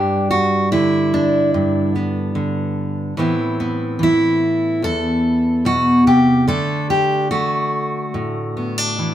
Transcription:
Already playing: G2 D4 G4
0.31 F#4
0.72 D3 E4
1.14 D4
1.54 G2
1.96 B3
2.35 D3
3.17 A2 E3 B3 C4 E4
3.60 B3
3.99 E3 E4
4.82 E2 A4
5.65 B2 F#4
6.07 C3 G4
6.47 D3 A3 D4 A4
6.90 G4
7.31 A3 F#4
8.14 A2
8.57 B3
8.78 D4
8.99 E3

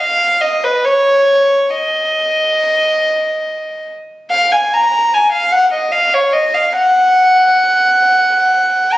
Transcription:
Already playing: F5
0.41 D#5
0.64 B4
0.85 C#5
1.70 D#5
4.31 F5
4.52 G#5
4.73 A#5
5.14 G#5
5.32 F5
5.52 F#5
5.73 D#5
5.92 F5
6.13 C#5
6.33 D#5
6.54 F5
6.73 F#5
8.93 A#5

